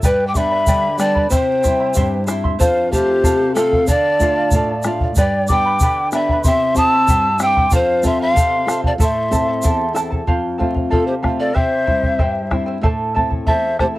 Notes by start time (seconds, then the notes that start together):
0.03 G2 G4 B4 D5 G5 B5, bombo low, shaker
0.27 G5 D6
0.35 G3 B3 D4 B4 D5 E5 G5 B5, bombo low, shaker
0.51 B4 D5 B5
0.67 D3 G4 B4 D5 G5 B5, bombo low, shaker
0.98 G3 B3 D4 B4 D5 G5 A5 B5, bombo rim, shaker
1.15 B4 D5 B5, bombo low
1.30 C3 E4 G4 C5 E5 G5 C6, bombo low, shaker
1.63 G3 C4 E4 C5 E5 C6, bombo low, shaker
1.80 E4 E5 C6
1.94 G2 E4 G4 C5 E5 C6, bombo low, shaker
2.27 G3 C4 E4 C5 E5 C6, bombo rim, shaker
2.44 E4 E5 C6, bombo low
2.59 F2 A4 C5 F5, bombo low, shaker
2.91 A3 C4 F4 G4 A4 C5 F5, bombo low, shaker
3.08 C5 F5
3.24 C3 A4 C5 F5, bombo low, shaker
3.55 A3 C4 F4 A4 C5 F5, bombo rim, shaker
3.73 C5 F5, bombo low
3.87 D3 A4 D5 F5 A5, bombo low, shaker
4.19 A3 D4 F4 A4 D5 F5, bombo low, shaker
4.38 D5 F5
4.51 A2 A4 D5 F5, bombo low, shaker
4.83 A3 D4 F4 A4 D5, bombo rim, shaker
4.87 F5
5.00 D5 F5, bombo low
5.16 G2 G4 B4 D5 G5 B5, bombo low, shaker
5.48 B3 D4 G4 B4 G5 D6, bombo low, shaker
5.52 D5 B5
5.65 B4 D5 B5
5.80 D3 G4 B4 D5 G5 B5, bombo low, shaker
6.12 B3 D4 G4 B4 D5 E5 G5 B5, bombo rim, shaker
6.16 B5
6.29 B4 D5 B5, bombo low
6.43 C3 E5 C6, bombo low, shaker
6.47 E4 G4 C5 E5 C6
6.74 C4 E4 G4 C5 E5 A5 D#6, bombo low, shaker
6.79 C6
6.89 E6
6.94 E4 E5 C6
7.07 G2 E4 G4 C5 E5 C6, bombo low, shaker
7.39 C4 E4 G4 C5 E5 G5 C6, bombo rim, shaker
7.43 D6 E6
7.57 E4 E5 C6, bombo low
7.71 F2 A4 C5 F5, bombo low, shaker
8.03 C4 F4 A4 C5 E5 F5, bombo low, shaker
8.07 C6
8.20 C5 F5 C6
8.34 C3 A4 C5 F5, bombo low, shaker
8.66 C4 F4 A4 C5, bombo rim, shaker
8.71 F5
8.84 C5 D5 F5 A5, bombo low
8.98 A2 E4 A4 C5 E5 A5 C6, bombo low, shaker
9.03 E5
9.31 C4 E4 A4 E5 A5, bombo low, shaker
9.48 E4 A4 A5
9.63 E2 E4 A4 C5 E5 A5, bombo low, shaker
9.93 C4 E4 A4 E5 A5, bombo rim, shaker
10.11 E4 A4 A5, bombo low
10.27 F2 A4 C5 F5, bombo low
10.58 A3 C4 F4 A4 C5 F5, bombo low
10.75 C5 F5, bombo low
10.90 C3 F4 A4 C5 F5, bombo low
11.07 G4 C5
11.22 A3 C4 F4 A4 C5 F5, bombo rim, bombo low
11.39 A4 C5 D5 F5
11.54 C3 E4 G4 C5 E5 G5, bombo low
11.85 G3 C4 E4 C5 E5 G5, bombo low
12.03 E4 C5 G5, bombo low
12.18 G2 E4 G4 C5 E5 G5, bombo low
12.51 G3 C4 E4 C5 E5 G5, bombo rim, bombo low
12.66 E4 C5 G5
12.81 A2 E4 A4 C5 E5 A5, bombo low
13.15 A3 C4 E4 A4 E5 A5, bombo low
13.30 E4 A4 A5, bombo low
13.47 E2 E4 A4 C5 E5 A5, bombo low
13.79 A3 C4 E4 G4 A4 C5 E5 A5, bombo rim, bombo low
13.95 A4 A5